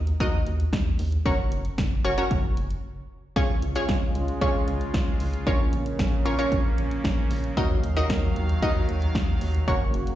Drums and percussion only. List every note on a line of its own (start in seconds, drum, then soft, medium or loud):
0.07 closed hi-hat medium
0.20 kick loud
0.20 closed hi-hat medium
0.47 closed hi-hat medium
0.60 closed hi-hat medium
0.73 kick loud
0.73 snare loud
0.73 closed hi-hat medium
0.99 open hi-hat medium
1.12 closed hi-hat medium
1.26 kick loud
1.26 closed hi-hat medium
1.52 closed hi-hat medium
1.65 closed hi-hat medium
1.78 kick loud
1.78 snare loud
1.78 closed hi-hat medium
2.05 closed hi-hat medium
2.18 closed hi-hat medium
2.31 kick loud
2.31 closed hi-hat medium
2.57 closed hi-hat medium
2.70 closed hi-hat medium
3.36 kick loud
3.36 closed hi-hat medium
3.62 closed hi-hat medium
3.75 closed hi-hat medium
3.89 kick loud
3.89 snare loud
3.89 closed hi-hat medium
4.15 closed hi-hat medium
4.28 closed hi-hat medium
4.41 kick loud
4.41 closed hi-hat medium
4.68 closed hi-hat medium
4.81 closed hi-hat medium
4.94 kick loud
4.94 snare loud
4.94 closed hi-hat medium
5.20 open hi-hat medium
5.33 closed hi-hat medium
5.47 kick loud
5.47 closed hi-hat medium
5.73 closed hi-hat medium
5.86 closed hi-hat medium
5.99 kick loud
5.99 snare loud
5.99 closed hi-hat medium
6.26 closed hi-hat medium
6.39 closed hi-hat medium
6.52 kick loud
6.52 closed hi-hat medium
6.78 closed hi-hat medium
6.91 closed hi-hat medium
7.04 kick loud
7.04 snare loud
7.04 closed hi-hat medium
7.31 open hi-hat medium
7.44 closed hi-hat medium
7.57 kick loud
7.57 closed hi-hat medium
7.83 closed hi-hat medium
7.97 closed hi-hat medium
8.10 kick loud
8.10 snare loud
8.10 closed hi-hat medium
8.36 closed hi-hat medium
8.49 closed hi-hat medium
8.62 kick loud
8.62 closed hi-hat medium
8.89 closed hi-hat medium
9.02 closed hi-hat medium
9.15 kick loud
9.15 snare loud
9.15 closed hi-hat medium
9.41 open hi-hat medium
9.55 closed hi-hat medium
9.68 kick loud
9.68 closed hi-hat medium
9.94 closed hi-hat medium
10.07 closed hi-hat medium